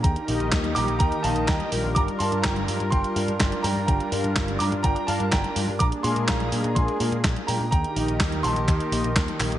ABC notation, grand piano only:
X:1
M:4/4
L:1/16
Q:1/4=125
K:Gm
V:1 name="Grand piano"
[gb]4 z2 [bd']2 [gb]2 [fa]2 [gb]3 z | [bd']2 [ac']2 [gb]4 [gc']6 [gb]2 | [gb]4 z2 [bd']2 [gb]2 [fa]2 [gb]3 z | [bd']2 [_ac']2 [fb]4 [ac']4 z2 [gb]2 |
[gb]6 [ac']8 z2 |]